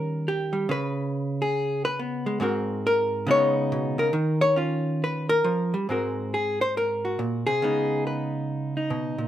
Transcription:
hollow-body jazz guitar
Already playing: D#3 G3 C#4 A#4
0.28 G4
0.53 G3
0.69 C#3 B4
1.42 G#4
1.85 B4
2.00 B3
2.26 G#3
2.40 G#2 G#3 C4 F#4 A#4
2.87 A#4
3.27 C#3 G#3 B3 D#4
3.31 C#5
3.72 B2
3.98 C#3 A#4
4.13 D#3
4.41 C#5
4.56 C#4 F4
5.04 B4
5.29 A#4
5.44 F3
5.74 G3
5.89 G#2 G#3 C4 F#4 A#4
6.34 G#4
6.61 C5
6.77 A#4
7.05 F#4
7.19 A#2
7.47 C3 G#4
7.62 C#3 G#3 B3 D#4
8.07 B4
8.77 D#4
8.90 B2
9.18 A#2

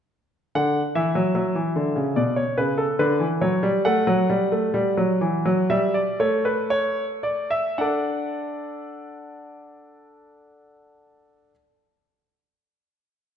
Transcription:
grand piano
0.55 D3 F#5
0.95 E3 E5
1.15 F#3
1.35 F#3
1.55 E3
1.76 D3
1.96 C#3
2.16 B2 D5
2.36 C#5
2.58 C#3 B4
2.78 A4
2.99 D3 B4
3.20 E3
3.41 F#3 C#5
3.63 G3
3.85 A3 F#5
4.07 F#3
4.30 G3
4.52 A3
4.74 G3
4.97 F#3
5.21 E3
5.46 F#3
5.70 G3 E5
5.94 D5
6.20 A3 C#5
6.45 B4
6.70 C#5
7.23 D5
7.51 E5
7.78 D4 A4 D5 F#5

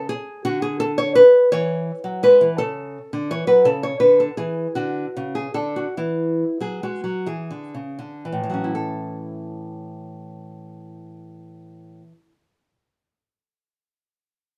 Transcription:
nylon-string guitar
Already playing: C#3
0.09 G#4
0.45 D3 F#4
0.62 G#4
0.80 A4
0.98 C#5
1.15 B4
1.52 E3 C#5
2.04 F#3
2.23 G#3 B4
2.41 E3
2.58 C#3 A4
3.13 D3
3.31 E3 C#5
3.47 F#3 B4
3.65 C#3 A4
3.83 C#5
4.00 D3 B4
4.20 A4
4.37 E3 G#4
4.75 D3 F#4
5.17 C#3
5.35 G#4
5.54 D3 A4
5.76 F#4
5.97 E3 E4
6.60 F#3 G#4
6.83 G#3 F#4
7.04 F#3
7.26 E3 G#4
7.51 D3
7.75 C#3
7.99 D3
8.25 E3
8.32 A2
8.44 E3
8.50 F#3
8.54 C#4
8.64 E4
8.75 A4

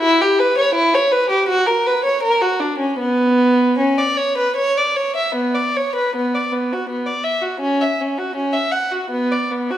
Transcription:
violin
0.00 E4
0.21 G4
0.39 B4
0.58 C#5
0.75 E4
0.94 C#5
1.12 B4
1.30 G4
1.49 F#4
1.67 A#4
1.86 B4
2.05 C#5
2.23 A#4
2.41 F#4
2.60 D4
2.78 C#4
2.99 B3
3.78 C#4
3.98 D5
4.17 C#5
4.38 B4
4.56 C#5
4.77 D5
4.96 C#5
5.16 E5
5.35 B3
5.55 D5
5.77 C#5
5.95 B4
6.16 B3
6.35 D5
6.52 B3
6.73 F#4
6.89 B3
7.06 D5
7.24 E5
7.42 F#4
7.60 C#4
7.81 E5
8.01 C#4
8.18 F#4
8.35 C#4
8.53 E5
8.71 F#5
8.91 F#4
9.10 B3
9.32 D5
9.51 B3
9.71 F#4

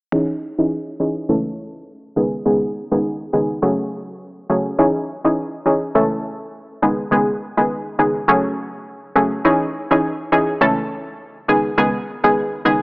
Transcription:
synth pluck
0.12 E3 C#4 D#4 G#4
0.58 E3 C#4 D#4 G#4
1.00 E3 C#4 D#4 G#4
1.29 C#2 E3 A3 C#4 A4
2.16 C#2 D#3 G#3 B3 G#4
2.46 C#2 D#3 G#3 B3 G#4
2.92 C#2 D#3 G#3 B3 G#4
3.33 C#2 D#3 G#3 B3 G#4
3.62 C#3 F#3 A3 C#4 G#4
4.50 C#3 F#3 A3 C#4 G#4
4.79 E3 C#4 D#4 G#4
5.25 E3 C#4 D#4 G#4
5.66 E3 C#4 D#4 G#4
5.95 C#2 E3 A3 C#4 A4
6.82 C#2 D#3 G#3 B3 G#4
7.11 C#2 D#3 G#3 B3 G#4
7.57 C#2 D#3 G#3 B3 G#4
7.99 C#2 D#3 G#3 B3 G#4
8.28 C#3 F#3 A3 C#4 G#4
9.16 C#3 F#3 A3 C#4 G#4
9.45 E3 C#4 D#4 G#4
9.91 E3 C#4 D#4 G#4
10.32 E3 C#4 D#4 G#4
10.61 C#2 E3 A3 C#4 A4
11.48 C#2 D#3 G#3 B3 G#4
11.78 C#2 D#3 G#3 B3 G#4
12.24 C#2 D#3 G#3 B3 G#4
12.65 C#2 D#3 G#3 B3 G#4

